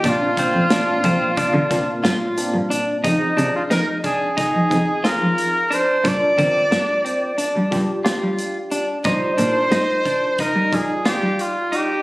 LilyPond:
<<
  \new Staff \with { instrumentName = "Trumpet" } { \time 9/8 \key f \dorian \tempo 4. = 60 f'1 r8 | ees'8. f'16 bes'8 aes'8 aes'4 bes'4 c''8 | d''2. r4. | c''2 bes'8 aes'8 g'8 f'8 g'8 | }
  \new Staff \with { instrumentName = "Clean electric guitar" } { \time 9/8 \key f \dorian d'8 c'8 d'8 c'8 d'4 f'4 d'8 | ees'8 d'8 ees'8 d'8 ees'4 f'4 d'8 | d'8 c'8 d'8 c'8 d'4 f'4 d'8 | ees'8 d'8 ees'8 d'8 ees'4 f'4 ees'8 | }
  \new Staff \with { instrumentName = "Tine electric piano" } { \time 9/8 \key f \dorian r16 <bes, bes c' d'>8. r16 <bes, bes c' d'>4 r16 <bes, bes c' d'>8. r16 <bes, bes c' d'>4 | <f c' ees' aes'>8 <f c' ees' aes'>4.~ <f c' ees' aes'>16 r16 <f c' ees' aes'>8 <f c' ees' aes'>4~ <f c' ees' aes'>16 r16 | <g d' f' bes'>8 <g d' f' bes'>4.~ <g d' f' bes'>16 r16 <g d' f' g'>8 <g d' f' g'>4~ <g d' f' g'>16 r16 | <g ees' f' d''>8 <g ees' f' bes'>4.~ <g ees' f' bes'>16 r16 <g ees' f' d''>8 <g ees' f' d''>4~ <g ees' f' d''>16 r16 | }
  \new Staff \with { instrumentName = "Cello" } { \clef bass \time 9/8 \key f \dorian bes,8 r16 f,8 r16 f,8. d8. g,8. g,8. | f,16 r16 c8 f,4~ f,16 f16 f,8. f4~ f16 | g,16 r16 d8 g,4~ g,16 g16 g,8. g4~ g16 | g,16 r16 bes,8 g,4~ g,16 g16 g,8. g4~ g16 | }
  \new DrumStaff \with { instrumentName = "Drums" } \drummode { \time 9/8 <hh bd>8 <hh bd>8 <hh sn>8 <hh bd>8 <hh bd>8 <hh bd sn>8 <hh sn>8 hh8 hh8 | <hh bd>8 hh8 <hh sn>8 <hh bd>8 <hh bd sn>8 <hh bd>8 <hh sn>8 hh8 hh8 | <hh bd>8 <hh bd>8 <hh sn>8 hh8 hh8 <hh bd>8 <hh sn>8 hh8 hh8 | <hh bd>8 hh8 <hh sn>8 <hh bd>8 <hh bd>8 <hh bd>8 <hh sn>8 hh8 hh8 | }
>>